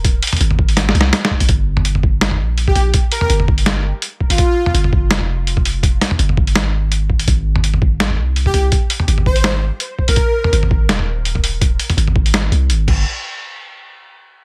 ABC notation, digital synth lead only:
X:1
M:4/4
L:1/16
Q:"Swing 16ths" 1/4=166
K:Ablyd
V:1 name="Digital synth lead"
z16 | z12 z G G z | z2 B B z8 z3 F- | F4- F z8 z3 |
z16 | z12 z G G z | z6 c2 z6 z B- | B4- B z8 z3 |
z16 | z16 |]